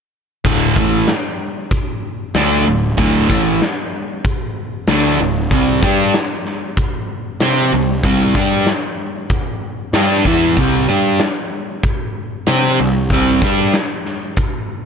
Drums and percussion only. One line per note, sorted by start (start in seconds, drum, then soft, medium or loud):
0.45 kick loud
0.45 closed hi-hat medium
0.76 kick loud
0.76 snare soft
1.07 snare medium
1.07 closed hi-hat medium
1.71 kick loud
1.71 closed hi-hat medium
2.35 snare loud
2.35 closed hi-hat medium
2.98 kick loud
2.98 closed hi-hat medium
3.30 kick loud
3.62 snare loud
3.62 closed hi-hat medium
4.25 kick loud
4.25 closed hi-hat medium
4.87 snare loud
4.87 closed hi-hat medium
5.51 kick medium
5.51 closed hi-hat medium
5.83 kick loud
5.83 snare soft
6.14 snare loud
6.14 closed hi-hat medium
6.46 snare soft
6.77 kick loud
6.77 closed hi-hat medium
7.40 snare loud
7.40 closed hi-hat medium
7.57 snare soft
8.03 kick medium
8.03 closed hi-hat medium
8.35 kick medium
8.67 snare loud
8.67 closed hi-hat medium
9.30 kick medium
9.30 closed hi-hat medium
9.93 snare loud
9.93 closed hi-hat medium
10.25 kick medium
10.57 kick loud
10.57 closed hi-hat medium
11.20 snare medium
11.20 closed hi-hat medium
11.83 kick medium
11.83 closed hi-hat medium
12.47 snare loud
12.47 closed hi-hat medium
12.63 snare soft
13.10 kick loud
13.10 closed hi-hat medium
13.42 kick loud
13.42 snare soft
13.74 snare loud
13.74 closed hi-hat medium
14.05 snare soft
14.37 kick loud
14.37 closed hi-hat medium